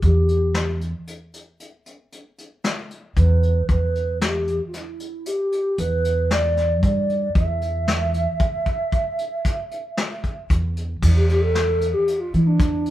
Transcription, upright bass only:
0.03 0.92 E2 medium
3.17 3.62 E2 medium
3.69 4.59 E2 medium
5.78 6.83 E2 medium
6.83 7.28 G2 medium
7.35 8.25 E2 medium
10.50 10.95 E2 medium
11.03 11.92 E2 medium
12.34 12.56 E3 medium
12.60 12.90 E2 medium

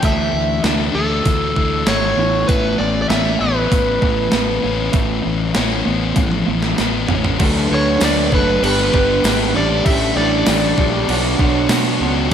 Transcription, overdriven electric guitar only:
0.05 0.61 E5 loud
0.95 1.90 A4 medium
1.88 2.51 C#5 medium
2.48 2.80 B4 loud
2.78 3.01 D5 medium
3.02 3.09 D5 medium
3.09 3.38 E5 loud
3.41 6.75 B4 medium
7.74 8.01 C#5 medium
8.04 8.34 D5 medium
8.34 8.62 B4 medium
8.64 9.56 B4 medium
9.56 9.86 D5 medium
9.86 10.14 E5 loud
10.17 11.96 D5 medium

